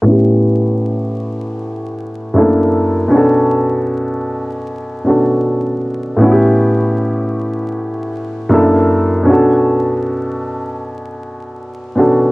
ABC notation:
X:1
M:4/4
L:1/8
Q:"Swing 16ths" 1/4=78
K:Bm
V:1 name="Upright piano"
[A,,B,CEG]6 [F,,A,^A,DE=A]2 | [B,,CDFA]4- [B,,CDFA] [B,,CDFA]3 | [A,,B,CEFG]6 [F,,^A,DE=A]2 | [B,,CDFA]6- [B,,CDFA] [B,,CDFA] |]